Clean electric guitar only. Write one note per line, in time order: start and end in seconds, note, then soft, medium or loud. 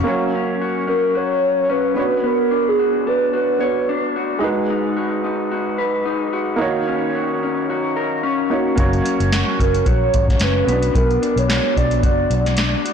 0.00 0.34 C#4 medium
0.00 0.61 F#4 medium
0.00 0.13 A#4 medium
0.07 1.96 F#3 medium
0.35 0.87 C#4 medium
0.62 1.14 F#4 medium
0.88 1.69 C#4 medium
1.15 2.79 F#4 medium
1.70 2.27 C#4 medium
1.96 2.23 B3 medium
2.24 4.43 B3 medium
2.51 3.06 D4 medium
2.79 3.33 F#4 medium
3.07 3.88 D4 medium
3.33 4.16 F#4 medium
3.60 4.48 C#5 medium
3.89 4.49 D4 medium
4.16 4.96 F#4 medium
4.43 6.60 G#3 medium
4.70 5.24 D#4 medium
4.97 5.51 F#4 medium
5.24 6.05 D#4 medium
5.52 6.32 F#4 medium
5.78 6.66 B4 medium
6.06 6.87 D#4 medium
6.33 7.15 F#4 medium
6.61 8.77 D#3 medium
6.88 7.43 C#4 medium
7.15 7.69 F#4 medium
7.43 8.23 C#4 medium
7.70 8.50 F#4 medium
7.96 8.84 A#4 medium
8.23 9.04 C#4 medium
8.51 9.32 F#4 soft
8.78 12.28 F#3 medium
9.05 9.59 C#4 medium
9.33 9.86 F#4 medium
9.60 10.41 C#4 medium
9.87 11.48 F#4 medium
10.41 10.98 C#4 medium
10.68 10.95 B3 medium
10.95 12.93 B3 medium
11.22 11.75 D4 medium
11.48 12.02 F#4 medium
11.76 12.56 D4 medium
12.03 12.84 F#4 medium
12.57 12.93 D4 medium
12.85 12.93 F#4 medium